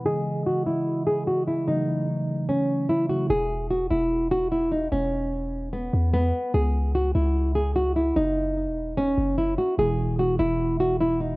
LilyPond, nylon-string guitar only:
\new Staff \with { instrumentName = "Nylon-string guitar" } { \time 4/4 \key e \major \tempo 4 = 148 gis'4 fis'8 e'4 gis'8 fis'8 e'8 | dis'2 cis'4 e'8 fis'8 | gis'4 fis'8 e'4 fis'8 e'8 dis'8 | cis'2 b4 b4 |
gis'4 fis'8 e'4 gis'8 fis'8 e'8 | dis'2 cis'4 e'8 fis'8 | gis'4 fis'8 e'4 fis'8 e'8 dis'8 | }